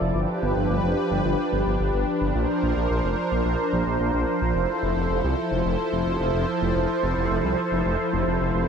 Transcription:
0, 0, Header, 1, 3, 480
1, 0, Start_track
1, 0, Key_signature, -1, "major"
1, 0, Tempo, 550459
1, 131, Time_signature, 4, 2, 24, 8
1, 7571, End_track
2, 0, Start_track
2, 0, Title_t, "Analog synth pad"
2, 0, Program_c, 0, 89
2, 0, Note_on_c, 0, 53, 91
2, 0, Note_on_c, 0, 64, 79
2, 0, Note_on_c, 0, 69, 79
2, 0, Note_on_c, 0, 74, 97
2, 95, Note_off_c, 0, 64, 0
2, 95, Note_off_c, 0, 69, 0
2, 112, Note_off_c, 0, 74, 0
2, 130, Note_on_c, 0, 62, 79
2, 131, Note_on_c, 0, 71, 98
2, 132, Note_on_c, 0, 67, 80
2, 2015, Note_off_c, 0, 53, 0
2, 2031, Note_off_c, 0, 71, 0
2, 2032, Note_off_c, 0, 67, 0
2, 2050, Note_on_c, 0, 53, 85
2, 2050, Note_on_c, 0, 70, 81
2, 2051, Note_on_c, 0, 72, 100
2, 3936, Note_off_c, 0, 62, 0
2, 3951, Note_off_c, 0, 70, 0
2, 3970, Note_on_c, 0, 64, 77
2, 3970, Note_on_c, 0, 69, 81
2, 7571, Note_off_c, 0, 53, 0
2, 7571, Note_off_c, 0, 64, 0
2, 7571, Note_off_c, 0, 69, 0
2, 7571, Note_off_c, 0, 72, 0
2, 7571, End_track
3, 0, Start_track
3, 0, Title_t, "Detuned saw bass"
3, 0, Program_c, 1, 39
3, 9, Note_on_c, 1, 29, 83
3, 103, Note_off_c, 1, 29, 0
3, 129, Note_on_c, 1, 31, 102
3, 223, Note_off_c, 1, 31, 0
3, 369, Note_on_c, 1, 31, 96
3, 463, Note_off_c, 1, 31, 0
3, 490, Note_on_c, 1, 31, 83
3, 583, Note_off_c, 1, 31, 0
3, 609, Note_on_c, 1, 31, 105
3, 703, Note_off_c, 1, 31, 0
3, 729, Note_on_c, 1, 29, 80
3, 823, Note_off_c, 1, 29, 0
3, 969, Note_on_c, 1, 31, 83
3, 1063, Note_off_c, 1, 31, 0
3, 1089, Note_on_c, 1, 31, 106
3, 1183, Note_off_c, 1, 31, 0
3, 1329, Note_on_c, 1, 31, 93
3, 1423, Note_off_c, 1, 31, 0
3, 1450, Note_on_c, 1, 31, 85
3, 1543, Note_off_c, 1, 31, 0
3, 1569, Note_on_c, 1, 31, 102
3, 1663, Note_off_c, 1, 31, 0
3, 1689, Note_on_c, 1, 31, 79
3, 1783, Note_off_c, 1, 31, 0
3, 1930, Note_on_c, 1, 31, 80
3, 2023, Note_off_c, 1, 31, 0
3, 2049, Note_on_c, 1, 34, 100
3, 2143, Note_off_c, 1, 34, 0
3, 2291, Note_on_c, 1, 34, 96
3, 2384, Note_off_c, 1, 34, 0
3, 2411, Note_on_c, 1, 34, 85
3, 2504, Note_off_c, 1, 34, 0
3, 2531, Note_on_c, 1, 34, 97
3, 2624, Note_off_c, 1, 34, 0
3, 2651, Note_on_c, 1, 29, 80
3, 2744, Note_off_c, 1, 29, 0
3, 2890, Note_on_c, 1, 34, 80
3, 2984, Note_off_c, 1, 34, 0
3, 3010, Note_on_c, 1, 34, 103
3, 3103, Note_off_c, 1, 34, 0
3, 3250, Note_on_c, 1, 34, 93
3, 3344, Note_off_c, 1, 34, 0
3, 3370, Note_on_c, 1, 34, 83
3, 3463, Note_off_c, 1, 34, 0
3, 3490, Note_on_c, 1, 34, 104
3, 3583, Note_off_c, 1, 34, 0
3, 3610, Note_on_c, 1, 34, 80
3, 3703, Note_off_c, 1, 34, 0
3, 3850, Note_on_c, 1, 34, 83
3, 3943, Note_off_c, 1, 34, 0
3, 3970, Note_on_c, 1, 29, 96
3, 4063, Note_off_c, 1, 29, 0
3, 4210, Note_on_c, 1, 29, 96
3, 4303, Note_off_c, 1, 29, 0
3, 4330, Note_on_c, 1, 29, 85
3, 4423, Note_off_c, 1, 29, 0
3, 4450, Note_on_c, 1, 29, 101
3, 4543, Note_off_c, 1, 29, 0
3, 4570, Note_on_c, 1, 36, 80
3, 4664, Note_off_c, 1, 36, 0
3, 4810, Note_on_c, 1, 29, 80
3, 4903, Note_off_c, 1, 29, 0
3, 4930, Note_on_c, 1, 29, 103
3, 5024, Note_off_c, 1, 29, 0
3, 5170, Note_on_c, 1, 29, 90
3, 5263, Note_off_c, 1, 29, 0
3, 5290, Note_on_c, 1, 29, 85
3, 5383, Note_off_c, 1, 29, 0
3, 5409, Note_on_c, 1, 29, 103
3, 5503, Note_off_c, 1, 29, 0
3, 5530, Note_on_c, 1, 29, 75
3, 5623, Note_off_c, 1, 29, 0
3, 5770, Note_on_c, 1, 29, 85
3, 5863, Note_off_c, 1, 29, 0
3, 5890, Note_on_c, 1, 29, 99
3, 5984, Note_off_c, 1, 29, 0
3, 6130, Note_on_c, 1, 29, 97
3, 6223, Note_off_c, 1, 29, 0
3, 6251, Note_on_c, 1, 29, 80
3, 6344, Note_off_c, 1, 29, 0
3, 6370, Note_on_c, 1, 29, 100
3, 6463, Note_off_c, 1, 29, 0
3, 6490, Note_on_c, 1, 36, 78
3, 6584, Note_off_c, 1, 36, 0
3, 6730, Note_on_c, 1, 29, 80
3, 6824, Note_off_c, 1, 29, 0
3, 6850, Note_on_c, 1, 29, 103
3, 6944, Note_off_c, 1, 29, 0
3, 7090, Note_on_c, 1, 29, 96
3, 7183, Note_off_c, 1, 29, 0
3, 7210, Note_on_c, 1, 29, 81
3, 7303, Note_off_c, 1, 29, 0
3, 7329, Note_on_c, 1, 29, 101
3, 7423, Note_off_c, 1, 29, 0
3, 7450, Note_on_c, 1, 29, 79
3, 7544, Note_off_c, 1, 29, 0
3, 7571, End_track
0, 0, End_of_file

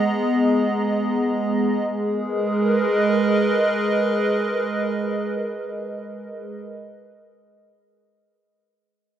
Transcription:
0, 0, Header, 1, 2, 480
1, 0, Start_track
1, 0, Key_signature, 5, "minor"
1, 0, Tempo, 500000
1, 8830, End_track
2, 0, Start_track
2, 0, Title_t, "Analog synth pad"
2, 0, Program_c, 0, 89
2, 0, Note_on_c, 0, 56, 82
2, 0, Note_on_c, 0, 59, 76
2, 0, Note_on_c, 0, 68, 86
2, 0, Note_on_c, 0, 75, 77
2, 0, Note_on_c, 0, 82, 86
2, 1779, Note_off_c, 0, 56, 0
2, 1791, Note_on_c, 0, 56, 80
2, 1792, Note_off_c, 0, 59, 0
2, 1792, Note_off_c, 0, 82, 0
2, 1793, Note_off_c, 0, 68, 0
2, 1793, Note_off_c, 0, 75, 0
2, 1866, Note_on_c, 0, 68, 77
2, 1939, Note_on_c, 0, 70, 79
2, 2013, Note_on_c, 0, 71, 75
2, 2089, Note_on_c, 0, 75, 75
2, 6275, Note_off_c, 0, 56, 0
2, 6350, Note_off_c, 0, 68, 0
2, 6423, Note_off_c, 0, 70, 0
2, 6493, Note_off_c, 0, 71, 0
2, 6493, Note_off_c, 0, 75, 0
2, 8830, End_track
0, 0, End_of_file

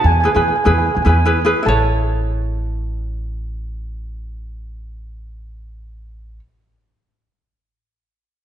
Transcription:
0, 0, Header, 1, 4, 480
1, 0, Start_track
1, 0, Key_signature, 3, "major"
1, 0, Tempo, 406780
1, 50, Time_signature, 4, 2, 24, 8
1, 9966, End_track
2, 0, Start_track
2, 0, Title_t, "Steel pan"
2, 0, Program_c, 0, 114
2, 68, Note_on_c, 0, 80, 71
2, 128, Note_off_c, 0, 80, 0
2, 142, Note_on_c, 0, 80, 52
2, 223, Note_off_c, 0, 80, 0
2, 238, Note_on_c, 0, 80, 63
2, 311, Note_off_c, 0, 80, 0
2, 325, Note_on_c, 0, 80, 49
2, 403, Note_off_c, 0, 80, 0
2, 427, Note_on_c, 0, 80, 56
2, 481, Note_off_c, 0, 80, 0
2, 495, Note_on_c, 0, 80, 51
2, 554, Note_off_c, 0, 80, 0
2, 569, Note_on_c, 0, 80, 53
2, 643, Note_off_c, 0, 80, 0
2, 657, Note_on_c, 0, 80, 52
2, 741, Note_off_c, 0, 80, 0
2, 756, Note_on_c, 0, 80, 50
2, 826, Note_off_c, 0, 80, 0
2, 841, Note_on_c, 0, 80, 41
2, 909, Note_off_c, 0, 80, 0
2, 923, Note_on_c, 0, 80, 53
2, 1001, Note_off_c, 0, 80, 0
2, 1015, Note_on_c, 0, 80, 43
2, 1102, Note_off_c, 0, 80, 0
2, 1119, Note_on_c, 0, 80, 51
2, 1193, Note_off_c, 0, 80, 0
2, 1207, Note_on_c, 0, 80, 49
2, 1275, Note_off_c, 0, 80, 0
2, 1289, Note_on_c, 0, 80, 62
2, 1373, Note_off_c, 0, 80, 0
2, 1961, Note_on_c, 0, 81, 66
2, 7528, Note_off_c, 0, 81, 0
2, 9966, End_track
3, 0, Start_track
3, 0, Title_t, "Ukulele"
3, 0, Program_c, 1, 24
3, 277, Note_on_c, 1, 64, 59
3, 292, Note_on_c, 1, 68, 57
3, 297, Note_on_c, 1, 71, 65
3, 355, Note_off_c, 1, 64, 0
3, 362, Note_off_c, 1, 68, 0
3, 365, Note_off_c, 1, 71, 0
3, 406, Note_on_c, 1, 64, 56
3, 418, Note_on_c, 1, 68, 51
3, 427, Note_on_c, 1, 71, 64
3, 623, Note_off_c, 1, 64, 0
3, 629, Note_off_c, 1, 68, 0
3, 634, Note_off_c, 1, 71, 0
3, 767, Note_on_c, 1, 64, 60
3, 773, Note_on_c, 1, 68, 58
3, 783, Note_on_c, 1, 71, 71
3, 1056, Note_off_c, 1, 64, 0
3, 1059, Note_off_c, 1, 68, 0
3, 1063, Note_off_c, 1, 71, 0
3, 1235, Note_on_c, 1, 64, 57
3, 1245, Note_on_c, 1, 68, 51
3, 1259, Note_on_c, 1, 71, 66
3, 1386, Note_off_c, 1, 64, 0
3, 1390, Note_off_c, 1, 68, 0
3, 1397, Note_off_c, 1, 71, 0
3, 1480, Note_on_c, 1, 64, 63
3, 1489, Note_on_c, 1, 71, 71
3, 1494, Note_on_c, 1, 68, 51
3, 1628, Note_off_c, 1, 64, 0
3, 1632, Note_off_c, 1, 68, 0
3, 1634, Note_off_c, 1, 71, 0
3, 1706, Note_on_c, 1, 64, 67
3, 1717, Note_on_c, 1, 68, 68
3, 1723, Note_on_c, 1, 71, 75
3, 1905, Note_off_c, 1, 64, 0
3, 1915, Note_off_c, 1, 68, 0
3, 1919, Note_on_c, 1, 64, 70
3, 1946, Note_on_c, 1, 69, 60
3, 1965, Note_off_c, 1, 71, 0
3, 1987, Note_on_c, 1, 73, 79
3, 7507, Note_off_c, 1, 64, 0
3, 7520, Note_off_c, 1, 69, 0
3, 7541, Note_off_c, 1, 73, 0
3, 9966, End_track
4, 0, Start_track
4, 0, Title_t, "Upright bass"
4, 0, Program_c, 2, 32
4, 49, Note_on_c, 2, 40, 83
4, 321, Note_off_c, 2, 40, 0
4, 418, Note_on_c, 2, 40, 69
4, 596, Note_off_c, 2, 40, 0
4, 781, Note_on_c, 2, 40, 83
4, 1048, Note_off_c, 2, 40, 0
4, 1139, Note_on_c, 2, 40, 69
4, 1225, Note_off_c, 2, 40, 0
4, 1248, Note_on_c, 2, 40, 85
4, 1792, Note_off_c, 2, 40, 0
4, 1960, Note_on_c, 2, 33, 73
4, 7528, Note_off_c, 2, 33, 0
4, 9966, End_track
0, 0, End_of_file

